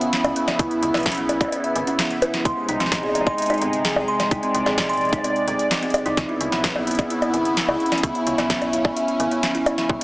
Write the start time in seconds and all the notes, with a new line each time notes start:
Already playing: G#1 C#3 B3 E4
0.01 E5, closed hi-hat
0.13 snare, closed hi-hat
0.24 C#2 C#4, closed hi-hat, high bongo
0.36 B3, closed hi-hat
0.48 snare, closed hi-hat, high bongo
0.59 C#2 E4, kick, closed hi-hat
0.71 closed hi-hat
0.83 C#2 E5, closed hi-hat
0.94 B1, snare, closed hi-hat, high bongo
0.97 closed hi-hat
1.00 closed hi-hat
1.03 C#4, kick, snare, closed hi-hat
1.06 closed hi-hat
1.09 closed hi-hat
1.12 closed hi-hat
1.15 B3, closed hi-hat
1.29 closed hi-hat, high bongo
1.41 E4, kick, closed hi-hat, high bongo
1.45 high bongo
1.48 closed hi-hat, high bongo
1.52 high bongo
1.56 high bongo
1.60 E5, closed hi-hat, high bongo
1.76 G#1, closed hi-hat
1.87 C#4, closed hi-hat
1.99 B3, snare, closed hi-hat
2.10 closed hi-hat
2.22 E4, closed hi-hat, high bongo
2.34 snare, closed hi-hat
2.45 C2 C3 G#3 D#4 C6, kick, closed hi-hat
2.69 C2 D#4, closed hi-hat
2.80 A#1 C4, snare, closed hi-hat
2.86 snare
2.92 kick, snare, closed hi-hat
2.98 snare
3.03 G#4, high bongo
3.09 high bongo
3.15 closed hi-hat, high bongo
3.21 high bongo
3.27 C6, kick, high bongo
3.38 closed hi-hat
3.42 closed hi-hat
3.46 D#4, closed hi-hat
3.50 closed hi-hat, high bongo
3.54 closed hi-hat
3.58 closed hi-hat
3.62 G1 C4, closed hi-hat
3.73 closed hi-hat
3.85 G#4, snare, closed hi-hat
3.96 C2, high bongo
4.08 C6
4.20 snare, closed hi-hat, high bongo
4.31 C2 D#4 D5, kick, closed hi-hat
4.43 C4, closed hi-hat
4.55 C2, closed hi-hat
4.66 A#1 G#4, snare, high bongo
4.78 kick, snare, closed hi-hat
4.89 C6, closed hi-hat
4.93 closed hi-hat
4.97 closed hi-hat
5.01 closed hi-hat
5.05 closed hi-hat
5.09 D#4, closed hi-hat
5.13 kick, closed hi-hat, high bongo
5.18 high bongo
5.24 C4, closed hi-hat, high bongo
5.30 high bongo
5.36 closed hi-hat
5.48 G1 C4, closed hi-hat
5.59 closed hi-hat
5.71 C4, snare, closed hi-hat
5.82 C4, closed hi-hat
5.90 D#5, closed hi-hat
5.94 closed hi-hat, high bongo
5.98 closed hi-hat
6.06 C2 D#4, closed hi-hat
6.17 C#2 C#3 B3 E4, kick, snare, closed hi-hat
6.29 E4
6.41 C#2, closed hi-hat
6.52 B1 E5, snare, closed hi-hat
6.64 kick, snare, closed hi-hat
6.76 B3, high bongo
6.87 B3, closed hi-hat
6.91 closed hi-hat
6.95 closed hi-hat
6.99 kick, closed hi-hat, high bongo
7.10 E4, closed hi-hat
7.22 closed hi-hat, high bongo
7.34 G#1 E5, closed hi-hat
7.45 closed hi-hat
7.57 B3, snare, closed hi-hat
7.69 C#2 B3, high bongo
7.80 closed hi-hat
7.86 closed hi-hat
7.92 E4, snare, closed hi-hat, high bongo
7.98 closed hi-hat
8.03 C#2 C#4, kick, closed hi-hat
8.15 E5, closed hi-hat
8.27 C#2, closed hi-hat
8.38 B1 B3, snare, closed hi-hat, high bongo
8.50 B3, kick, snare, closed hi-hat
8.62 closed hi-hat, high bongo
8.73 E4, closed hi-hat
8.85 kick, high bongo
8.97 E5, closed hi-hat
9.08 closed hi-hat
9.20 G#1 B3, closed hi-hat
9.31 B3, closed hi-hat
9.43 snare, closed hi-hat
9.55 E4, closed hi-hat
9.66 closed hi-hat, high bongo
9.78 E5, snare, closed hi-hat
9.89 C2 C3 G#3 D#4, kick